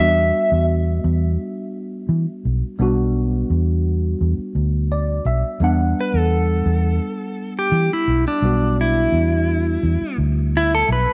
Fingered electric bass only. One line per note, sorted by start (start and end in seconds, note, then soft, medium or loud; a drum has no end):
0.00 0.30 E2 medium
0.52 0.99 E2 medium
1.04 1.36 E2 loud
2.09 2.25 E3 medium
2.45 2.61 B1 medium
2.79 3.43 B1 medium
3.50 4.13 E2 medium
4.21 4.37 E2 medium
4.38 muted fingered electric bass stroke soft
4.55 5.18 D2 medium
5.25 5.42 B1 medium
5.60 5.92 E2 medium
6.14 6.61 E2 medium
6.66 6.98 E2 loud
7.72 7.88 E3 medium
8.07 8.24 B1 medium
8.42 9.06 B1 medium
9.12 9.76 E2 medium
9.83 9.99 E2 medium
10.01 muted fingered electric bass stroke soft
10.18 10.82 D2 medium
10.89 11.05 B1 medium